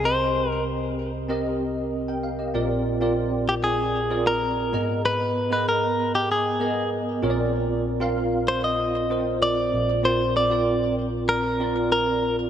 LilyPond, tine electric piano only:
<<
  \new Staff \with { instrumentName = "Tine electric piano" } { \time 4/4 \key bes \mixolydian \tempo 4 = 96 << { r2. r16 <bes' g''>16 f''16 <g' ees''>16~ | <g' ees''>16 r2. r8. | r1 | r1 |
r1 | } \\ { <c' g' bes' ees''>4~ <c' g' bes' ees''>16 r8. <c' g' bes' ees''>4~ <c' g' bes' ees''>16 r8. | <c' f' bes' d''>8 r16 <c' f' bes' d''>4 r8. <c' f' bes' d''>4 <ces' aes' ees'' bes''>8~ | <ces' aes' ees'' bes''>8 r16 <ces' aes' bes' ees''>4 r8. <ces' aes' bes' ees''>4 <c' f' bes' des'' d''>8~ | <c' f' bes' des'' d''>8 r16 <c' f' bes' f''>4 r8. <c' f' bes' c''>4 r8 |
<c' f' bes' d''>8 r16 <c' f' bes' d''>4 r8. <c' f' bes' d''>4 r8 | } >> }
  \new Staff \with { instrumentName = "Tine electric piano" } { \clef bass \time 4/4 \key bes \mixolydian <c, c>2.~ <c, c>8 r8 | <bes,, bes,>2.~ <bes,, bes,>8 aes,8~ | aes,2.~ aes,8 <bes,, bes,>8~ | <bes,, bes,>2.~ <bes,, bes,>8 <bes,, bes,>8~ |
<bes,, bes,>2.~ <bes,, bes,>8 r8 | }
>>